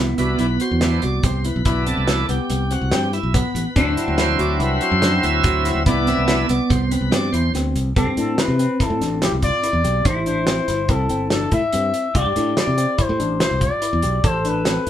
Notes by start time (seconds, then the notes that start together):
Already playing: C2 B3 E4
0.18 C2 E3 B3 D4 F#4 B4, closed hi-hat
0.39 B1 E4, closed hi-hat
0.60 F#4 C5, closed hi-hat
0.71 E2
0.81 E3 B3 D4 E4, snare, closed hi-hat
1.02 C2 F#4 D5, closed hi-hat
1.23 C2 G4 C5, kick, closed hi-hat
1.44 E4 B4, closed hi-hat
1.56 B1
1.65 B1 E3 B3 D4 E4, kick, closed hi-hat
1.86 C4 A4, closed hi-hat
1.97 C2
2.08 E4, snare, closed hi-hat
2.29 C2 B3 G4, closed hi-hat
2.50 C2, closed hi-hat
2.71 C4 F#4, closed hi-hat
2.81 C2
2.91 G2 C4 G4, snare, closed hi-hat
3.13 E4, closed hi-hat
3.23 B1
3.34 B3 B4, kick, closed hi-hat
3.55 A1, closed hi-hat
3.76 D2 F#3 C4 D4 E4, kick, closed hi-hat
3.97 E4, closed hi-hat
4.08 D2
4.18 E4 C5, snare, closed hi-hat
4.39 D2 F#4 D5, closed hi-hat
4.60 C2 E4 B4, closed hi-hat
4.81 F#4 C5, closed hi-hat
4.92 F#2
5.02 D4, snare, closed hi-hat
5.23 D2 E4 E5, closed hi-hat
5.44 D2 F#4, kick, closed hi-hat
5.65 E4, snare, closed hi-hat
5.75 D2
5.86 C2 E3 B3 D4 E4 D5, kick, closed hi-hat
6.07 C4 E5, snare, closed hi-hat
6.17 C2
6.28 E4, snare, closed hi-hat
6.49 C2 B3 D5, closed hi-hat
6.70 C2 C5, kick, closed hi-hat
6.91 C4 B4, closed hi-hat
7.01 C2
7.11 G2 C4 D5, snare, closed hi-hat
7.32 E2 E4 C5, closed hi-hat
7.54 D2 C4, snare, closed hi-hat
7.76 C2, closed hi-hat
7.96 C2 C4 G4 A4, kick, closed hi-hat
8.06 G2
8.17 A2 D4 A4, closed hi-hat
8.38 E4 B4, snare, closed hi-hat
8.48 C3
8.59 C4, closed hi-hat
8.80 E4 A4, kick, closed hi-hat
8.90 A2
9.01 A1 D4, snare, closed hi-hat
9.22 E4 G4, snare, closed hi-hat
9.32 C2
9.42 F4 D5, kick, closed hi-hat
9.63 E4, closed hi-hat
9.73 E2
9.84 B1 G4, closed hi-hat
10.05 A1 E4 C5, kick, closed hi-hat
10.26 D4 C5, closed hi-hat
10.47 C4 C5, snare, closed hi-hat
10.68 G1 E4, snare, closed hi-hat
10.89 C2 C4 A4, kick, closed hi-hat
11.09 G1 C4, closed hi-hat
11.30 D4 A4, snare, closed hi-hat
11.51 A2 E4 E5, kick, closed hi-hat
11.73 G2 C4, closed hi-hat
11.94 closed hi-hat
12.15 C2 G4 D5, kick, closed hi-hat
12.26 G2
12.36 A2 D4, closed hi-hat
12.56 E4 D5, snare, closed hi-hat
12.67 C3
12.78 C4, closed hi-hat
12.98 E4 C5, kick, closed hi-hat
13.09 A2
13.19 A1 D4, closed hi-hat
13.40 E4 C5, snare, closed hi-hat
13.51 C2
13.61 F4 D5, kick, closed hi-hat
13.82 E4, closed hi-hat
13.93 E2
14.02 B1 G4, closed hi-hat
14.24 A1 A4 C5, kick, closed hi-hat
14.45 D4 B4, closed hi-hat
14.65 C4, snare, closed hi-hat
14.87 G1 E4, closed hi-hat